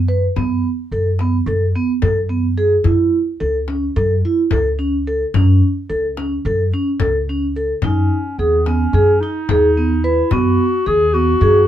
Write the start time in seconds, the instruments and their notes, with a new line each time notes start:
Already playing: upright bass F#2
0.08 vibraphone B4
0.36 upright bass F#2, vibraphone B3, frame drum
0.91 upright bass F#2, vibraphone A4
1.19 vibraphone B3, frame drum
1.46 upright bass F#2, vibraphone A4
1.75 vibraphone B3
2.02 upright bass F#2, vibraphone A4, frame drum
2.29 vibraphone B3
2.58 vibraphone G#4
2.84 upright bass F#2, vibraphone E4, frame drum
3.40 upright bass C#2, vibraphone A4
3.68 vibraphone C#4, frame drum
3.96 upright bass F#2, vibraphone A4
4.25 vibraphone E4
4.51 upright bass C#2, vibraphone A4, frame drum
4.79 vibraphone C#4
5.07 vibraphone A4
5.34 upright bass F#2, vibraphone C#4, frame drum
5.63 frame drum
5.90 upright bass C#2, vibraphone A4
6.17 vibraphone C#4, frame drum
6.45 upright bass F#2, vibraphone A4
6.72 vibraphone C#4, frame drum
7.00 upright bass C#2, vibraphone A4, frame drum
7.29 vibraphone C#4
7.56 vibraphone A4, frame drum
7.82 upright bass F#2, clarinet C#4, vibraphone D#4, frame drum
8.38 upright bass D#2, clarinet B3, vibraphone G#4
8.66 vibraphone B3, clarinet C#4, frame drum
8.93 upright bass F#2, vibraphone G#4
9.21 clarinet D#4, vibraphone D#4
9.49 upright bass D#2, vibraphone G#4, frame drum
9.77 vibraphone B3
10.04 clarinet E4, vibraphone B4
10.31 upright bass F#2, vibraphone B3, clarinet F#4, frame drum
10.86 upright bass D#2, vibraphone G#4, clarinet G#4
11.14 vibraphone B3, clarinet F#4
11.41 upright bass F#2, vibraphone G#4